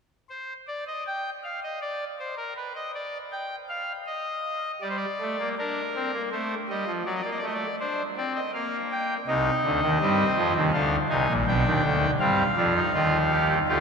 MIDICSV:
0, 0, Header, 1, 2, 480
1, 0, Start_track
1, 0, Tempo, 753769
1, 194, Time_signature, 3, 2, 24, 8
1, 3552, Tempo, 738007
1, 8901, End_track
2, 0, Start_track
2, 0, Title_t, "Pipe organ"
2, 0, Program_c, 0, 19
2, 189, Note_on_c, 0, 72, 69
2, 340, Note_off_c, 0, 72, 0
2, 430, Note_on_c, 0, 74, 53
2, 536, Note_off_c, 0, 74, 0
2, 554, Note_on_c, 0, 75, 65
2, 658, Note_off_c, 0, 75, 0
2, 677, Note_on_c, 0, 79, 64
2, 826, Note_off_c, 0, 79, 0
2, 916, Note_on_c, 0, 77, 65
2, 1019, Note_off_c, 0, 77, 0
2, 1039, Note_on_c, 0, 75, 61
2, 1140, Note_off_c, 0, 75, 0
2, 1154, Note_on_c, 0, 74, 64
2, 1302, Note_off_c, 0, 74, 0
2, 1395, Note_on_c, 0, 72, 68
2, 1496, Note_off_c, 0, 72, 0
2, 1512, Note_on_c, 0, 70, 61
2, 1614, Note_off_c, 0, 70, 0
2, 1634, Note_on_c, 0, 71, 64
2, 1735, Note_off_c, 0, 71, 0
2, 1750, Note_on_c, 0, 75, 65
2, 1853, Note_off_c, 0, 75, 0
2, 1876, Note_on_c, 0, 74, 57
2, 2023, Note_off_c, 0, 74, 0
2, 2114, Note_on_c, 0, 79, 68
2, 2262, Note_off_c, 0, 79, 0
2, 2349, Note_on_c, 0, 77, 66
2, 2499, Note_off_c, 0, 77, 0
2, 2586, Note_on_c, 0, 75, 68
2, 3002, Note_off_c, 0, 75, 0
2, 3066, Note_on_c, 0, 74, 60
2, 3067, Note_on_c, 0, 55, 63
2, 3107, Note_off_c, 0, 74, 0
2, 3118, Note_on_c, 0, 72, 51
2, 3161, Note_on_c, 0, 74, 62
2, 3162, Note_off_c, 0, 72, 0
2, 3218, Note_off_c, 0, 55, 0
2, 3316, Note_on_c, 0, 57, 55
2, 3417, Note_off_c, 0, 57, 0
2, 3433, Note_on_c, 0, 58, 64
2, 3496, Note_off_c, 0, 74, 0
2, 3534, Note_off_c, 0, 58, 0
2, 3555, Note_on_c, 0, 62, 73
2, 3558, Note_on_c, 0, 70, 57
2, 3704, Note_off_c, 0, 62, 0
2, 3796, Note_on_c, 0, 60, 69
2, 3898, Note_off_c, 0, 60, 0
2, 3916, Note_on_c, 0, 58, 64
2, 3969, Note_off_c, 0, 70, 0
2, 4018, Note_off_c, 0, 58, 0
2, 4033, Note_on_c, 0, 72, 58
2, 4035, Note_on_c, 0, 57, 67
2, 4181, Note_off_c, 0, 72, 0
2, 4183, Note_off_c, 0, 57, 0
2, 4276, Note_on_c, 0, 55, 62
2, 4277, Note_on_c, 0, 75, 58
2, 4377, Note_off_c, 0, 55, 0
2, 4391, Note_on_c, 0, 53, 64
2, 4424, Note_off_c, 0, 75, 0
2, 4494, Note_off_c, 0, 53, 0
2, 4512, Note_on_c, 0, 54, 72
2, 4515, Note_on_c, 0, 74, 54
2, 4564, Note_off_c, 0, 74, 0
2, 4570, Note_on_c, 0, 75, 49
2, 4614, Note_off_c, 0, 54, 0
2, 4617, Note_off_c, 0, 75, 0
2, 4618, Note_on_c, 0, 74, 50
2, 4637, Note_on_c, 0, 58, 72
2, 4667, Note_off_c, 0, 74, 0
2, 4677, Note_on_c, 0, 75, 59
2, 4722, Note_off_c, 0, 75, 0
2, 4724, Note_on_c, 0, 74, 54
2, 4737, Note_off_c, 0, 58, 0
2, 4753, Note_on_c, 0, 57, 58
2, 4772, Note_off_c, 0, 74, 0
2, 4776, Note_on_c, 0, 75, 45
2, 4823, Note_off_c, 0, 75, 0
2, 4823, Note_on_c, 0, 74, 54
2, 4901, Note_off_c, 0, 57, 0
2, 4968, Note_off_c, 0, 74, 0
2, 4996, Note_on_c, 0, 62, 74
2, 4997, Note_on_c, 0, 72, 65
2, 5143, Note_off_c, 0, 62, 0
2, 5144, Note_off_c, 0, 72, 0
2, 5238, Note_on_c, 0, 60, 66
2, 5239, Note_on_c, 0, 74, 60
2, 5339, Note_off_c, 0, 74, 0
2, 5356, Note_on_c, 0, 75, 58
2, 5385, Note_off_c, 0, 60, 0
2, 5457, Note_off_c, 0, 75, 0
2, 5478, Note_on_c, 0, 77, 63
2, 5481, Note_on_c, 0, 58, 73
2, 5625, Note_off_c, 0, 77, 0
2, 5721, Note_on_c, 0, 79, 61
2, 5868, Note_off_c, 0, 79, 0
2, 5891, Note_off_c, 0, 58, 0
2, 5955, Note_on_c, 0, 36, 74
2, 5956, Note_on_c, 0, 48, 78
2, 5956, Note_on_c, 0, 63, 64
2, 5957, Note_on_c, 0, 75, 63
2, 6103, Note_off_c, 0, 36, 0
2, 6104, Note_off_c, 0, 48, 0
2, 6194, Note_on_c, 0, 38, 65
2, 6196, Note_on_c, 0, 50, 69
2, 6296, Note_off_c, 0, 38, 0
2, 6297, Note_off_c, 0, 50, 0
2, 6313, Note_on_c, 0, 39, 75
2, 6313, Note_on_c, 0, 51, 76
2, 6366, Note_off_c, 0, 63, 0
2, 6415, Note_off_c, 0, 39, 0
2, 6415, Note_off_c, 0, 51, 0
2, 6433, Note_on_c, 0, 43, 77
2, 6433, Note_on_c, 0, 60, 65
2, 6435, Note_on_c, 0, 55, 87
2, 6580, Note_off_c, 0, 43, 0
2, 6582, Note_off_c, 0, 55, 0
2, 6666, Note_on_c, 0, 53, 75
2, 6668, Note_on_c, 0, 41, 85
2, 6770, Note_off_c, 0, 53, 0
2, 6771, Note_off_c, 0, 41, 0
2, 6776, Note_off_c, 0, 75, 0
2, 6785, Note_on_c, 0, 39, 76
2, 6787, Note_on_c, 0, 51, 78
2, 6842, Note_off_c, 0, 60, 0
2, 6889, Note_off_c, 0, 39, 0
2, 6890, Note_off_c, 0, 51, 0
2, 6904, Note_on_c, 0, 50, 86
2, 6904, Note_on_c, 0, 77, 68
2, 6905, Note_on_c, 0, 62, 69
2, 6907, Note_on_c, 0, 38, 87
2, 7053, Note_off_c, 0, 50, 0
2, 7054, Note_off_c, 0, 62, 0
2, 7054, Note_off_c, 0, 77, 0
2, 7055, Note_off_c, 0, 38, 0
2, 7140, Note_on_c, 0, 63, 69
2, 7142, Note_on_c, 0, 36, 79
2, 7142, Note_on_c, 0, 48, 82
2, 7143, Note_on_c, 0, 80, 72
2, 7247, Note_off_c, 0, 48, 0
2, 7248, Note_off_c, 0, 36, 0
2, 7267, Note_on_c, 0, 34, 77
2, 7268, Note_on_c, 0, 46, 75
2, 7291, Note_off_c, 0, 63, 0
2, 7293, Note_off_c, 0, 80, 0
2, 7370, Note_off_c, 0, 34, 0
2, 7371, Note_off_c, 0, 46, 0
2, 7385, Note_on_c, 0, 35, 84
2, 7387, Note_on_c, 0, 47, 86
2, 7387, Note_on_c, 0, 79, 72
2, 7389, Note_on_c, 0, 62, 72
2, 7489, Note_off_c, 0, 35, 0
2, 7490, Note_off_c, 0, 47, 0
2, 7508, Note_on_c, 0, 39, 86
2, 7508, Note_on_c, 0, 51, 93
2, 7610, Note_off_c, 0, 39, 0
2, 7610, Note_off_c, 0, 51, 0
2, 7618, Note_on_c, 0, 38, 71
2, 7618, Note_on_c, 0, 50, 68
2, 7768, Note_off_c, 0, 38, 0
2, 7768, Note_off_c, 0, 50, 0
2, 7798, Note_off_c, 0, 79, 0
2, 7799, Note_off_c, 0, 62, 0
2, 7857, Note_on_c, 0, 77, 78
2, 7858, Note_on_c, 0, 55, 94
2, 7859, Note_on_c, 0, 43, 89
2, 7860, Note_on_c, 0, 60, 70
2, 8009, Note_off_c, 0, 55, 0
2, 8010, Note_off_c, 0, 43, 0
2, 8010, Note_off_c, 0, 60, 0
2, 8096, Note_on_c, 0, 53, 84
2, 8098, Note_on_c, 0, 41, 80
2, 8099, Note_on_c, 0, 62, 72
2, 8205, Note_off_c, 0, 62, 0
2, 8221, Note_on_c, 0, 63, 67
2, 8248, Note_off_c, 0, 53, 0
2, 8249, Note_off_c, 0, 41, 0
2, 8327, Note_off_c, 0, 63, 0
2, 8341, Note_on_c, 0, 65, 75
2, 8343, Note_on_c, 0, 39, 85
2, 8343, Note_on_c, 0, 51, 91
2, 8492, Note_off_c, 0, 65, 0
2, 8587, Note_on_c, 0, 67, 75
2, 8689, Note_off_c, 0, 77, 0
2, 8736, Note_off_c, 0, 67, 0
2, 8758, Note_off_c, 0, 51, 0
2, 8759, Note_off_c, 0, 39, 0
2, 8824, Note_on_c, 0, 38, 72
2, 8824, Note_on_c, 0, 67, 82
2, 8826, Note_on_c, 0, 50, 70
2, 8827, Note_on_c, 0, 65, 76
2, 8901, Note_off_c, 0, 38, 0
2, 8901, Note_off_c, 0, 50, 0
2, 8901, Note_off_c, 0, 65, 0
2, 8901, Note_off_c, 0, 67, 0
2, 8901, End_track
0, 0, End_of_file